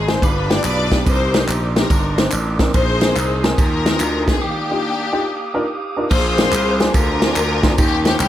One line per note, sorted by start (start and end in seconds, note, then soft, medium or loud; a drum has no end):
0.00 0.16 G#1 medium
0.00 0.18 G#3 medium
0.00 0.22 D#5 medium
0.00 0.20 A#5 medium
0.00 0.22 C6 medium
0.08 0.17 A#3 medium
0.08 0.17 C4 medium
0.08 0.17 D#4 medium
0.08 0.17 G#4 medium
0.08 0.23 C5 medium
0.08 snare loud
0.08 ride soft
0.08 tambourine medium
0.22 0.58 G1 loud
0.22 0.88 G2 medium
0.22 1.03 D4 medium
0.22 0.64 F4 medium
0.22 1.06 G4 medium
0.22 0.50 B4 loud
0.22 1.06 F5 medium
0.22 1.06 B5 medium
0.22 2.72 D6 medium
0.22 kick loud
0.22 ride medium
0.22 tambourine medium
0.50 0.59 B3 medium
0.50 0.59 D4 medium
0.50 0.59 F4 medium
0.50 0.59 G4 medium
0.50 0.64 D5 loud
0.50 snare loud
0.50 ride medium
0.50 tambourine medium
0.64 1.00 B1 medium
0.64 1.04 F4 medium
0.64 1.04 B4 medium
0.64 1.04 D5 loud
0.64 clap loud
0.64 ride medium
0.64 tambourine loud
0.92 1.01 B3 medium
0.92 1.01 D4 medium
0.92 1.01 F4 medium
0.92 1.01 G4 medium
0.92 kick loud
0.92 snare loud
0.92 ride medium
0.92 tambourine soft
1.05 1.42 C2 medium
1.05 1.72 C3 medium
1.05 1.76 D#4 medium
1.05 1.87 G4 medium
1.05 4.39 A#4 medium
1.05 1.46 C5 loud
1.05 2.72 D5 medium
1.05 4.38 C6 medium
1.05 kick loud
1.05 ride medium
1.05 tambourine medium
1.34 1.43 C4 medium
1.34 1.43 D4 medium
1.34 1.43 D#4 medium
1.34 1.43 A#4 medium
1.34 snare loud
1.34 ride medium
1.34 tambourine medium
1.48 1.84 A#1 medium
1.48 clap medium
1.48 ride medium
1.48 tambourine medium
1.75 1.85 C4 medium
1.75 1.85 D4 medium
1.75 2.57 D4 medium
1.75 1.85 D#4 medium
1.75 2.57 D#4 medium
1.75 1.85 G4 medium
1.75 2.15 A#4 medium
1.75 snare loud
1.75 ride soft
1.75 tambourine medium
1.90 2.26 G1 medium
1.90 kick loud
1.90 ride medium
1.90 tambourine medium
2.18 2.27 C4 medium
2.18 2.27 D4 medium
2.18 2.27 D#4 medium
2.18 2.27 C5 medium
2.18 snare loud
2.18 ride medium
2.18 tambourine medium
2.32 2.68 A1 medium
2.32 clap loud
2.32 ride medium
2.32 tambourine loud
2.59 2.69 C4 medium
2.59 2.69 D4 medium
2.59 2.69 D#4 medium
2.59 2.69 A#4 medium
2.59 kick loud
2.59 snare loud
2.59 ride medium
2.59 tambourine soft
2.73 3.10 A#1 loud
2.73 3.40 A#2 medium
2.73 3.55 D#4 medium
2.73 3.55 G#4 medium
2.73 3.40 C5 loud
2.73 4.40 G#5 medium
2.73 4.40 D#6 medium
2.73 kick loud
2.73 ride medium
2.73 tambourine medium
3.01 3.11 C4 medium
3.01 3.11 D#4 medium
3.01 3.11 G#4 medium
3.01 3.11 A#4 medium
3.01 snare loud
3.01 ride medium
3.01 tambourine medium
3.16 3.52 C2 loud
3.16 clap medium
3.16 ride medium
3.16 tambourine medium
3.44 3.53 C4 loud
3.44 3.53 D#4 medium
3.44 3.53 G#4 medium
3.44 3.53 A#4 loud
3.44 snare loud
3.44 ride soft
3.44 tambourine medium
3.58 3.94 D#2 medium
3.58 4.39 D#4 medium
3.58 4.39 F4 medium
3.58 4.24 A#4 loud
3.58 kick loud
3.58 ride medium
3.58 tambourine medium
3.86 3.95 C4 medium
3.86 3.95 D#4 medium
3.86 3.95 G#4 medium
3.86 3.95 A#4 medium
3.86 snare loud
3.86 ride medium
3.86 tambourine soft
4.00 4.36 D2 medium
4.00 clap loud
4.00 ride medium
4.00 tambourine loud
4.28 4.37 C4 medium
4.28 4.37 D#4 medium
4.28 4.37 G#4 medium
4.28 4.43 G#4 medium
4.28 4.37 A#4 medium
4.28 kick loud
4.28 snare loud
4.28 ride medium
4.28 tambourine soft
4.42 5.08 D#3 medium
4.42 5.65 A#3 medium
4.42 5.65 D4 medium
4.42 6.08 G4 medium
4.42 5.69 G4 loud
4.42 6.08 F5 medium
4.42 6.08 D6 medium
4.42 6.08 D#6 medium
4.70 4.79 D4 medium
4.70 4.79 D#4 medium
4.70 4.79 F4 medium
4.70 4.80 G4 medium
5.12 5.21 D4 medium
5.12 5.21 D#4 medium
5.12 5.22 F4 medium
5.12 5.22 G4 loud
5.54 5.63 D4 medium
5.54 5.63 D#4 medium
5.54 5.63 F4 medium
5.54 5.63 A#4 loud
5.97 6.05 D4 medium
5.97 6.06 D#4 medium
5.97 6.06 F4 medium
5.97 6.06 A#4 medium
6.11 6.46 A#1 loud
6.11 6.77 A#2 medium
6.11 6.91 F4 medium
6.11 6.91 G#4 medium
6.11 7.77 A#4 medium
6.11 6.90 C5 loud
6.11 7.77 G#5 medium
6.11 8.28 C6 medium
6.11 7.77 D6 medium
6.11 kick loud
6.11 crash loud
6.11 tambourine medium
6.38 6.47 C4 medium
6.38 6.47 D4 medium
6.38 6.47 F4 medium
6.38 6.47 G#4 medium
6.38 6.48 A#4 medium
6.38 snare loud
6.38 ride medium
6.38 tambourine medium
6.52 6.88 C2 loud
6.52 clap loud
6.52 ride medium
6.52 tambourine medium
6.80 6.89 C4 medium
6.80 6.89 D4 medium
6.80 6.89 F4 medium
6.80 6.89 G#4 medium
6.80 6.90 C5 loud
6.80 snare loud
6.80 ride soft
6.80 tambourine medium
6.94 7.30 D2 medium
6.94 7.74 D4 medium
6.94 7.74 F4 medium
6.94 7.78 A#4 loud
6.94 kick loud
6.94 ride medium
6.94 tambourine medium
7.22 7.31 C4 medium
7.22 7.31 D4 medium
7.22 7.31 F4 medium
7.22 7.31 G#4 medium
7.22 7.32 C5 medium
7.22 snare loud
7.22 ride medium
7.22 tambourine medium
7.36 7.72 D2 medium
7.36 clap loud
7.36 ride medium
7.36 tambourine loud
7.63 7.73 C4 medium
7.63 7.73 D4 medium
7.63 7.73 F4 medium
7.63 7.73 G#4 medium
7.63 7.73 A#4 medium
7.63 kick loud
7.63 snare loud
7.63 ride medium
7.63 tambourine soft
7.78 8.14 D#2 loud
7.78 8.28 D#3 medium
7.78 8.28 A#3 medium
7.78 8.28 C#4 medium
7.78 8.28 G4 medium
7.78 8.04 G4 loud
7.78 8.28 F5 medium
7.78 8.28 C#6 medium
7.78 kick loud
7.78 ride medium
7.78 tambourine medium
8.05 8.15 C#4 medium
8.05 8.15 D#4 medium
8.05 8.15 F4 medium
8.05 8.15 G4 medium
8.05 8.19 G4 loud
8.05 8.15 C5 medium
8.05 snare loud
8.05 ride medium
8.05 tambourine medium
8.20 8.28 C2 loud
8.20 8.28 G4 loud
8.20 clap loud
8.20 ride medium
8.20 tambourine medium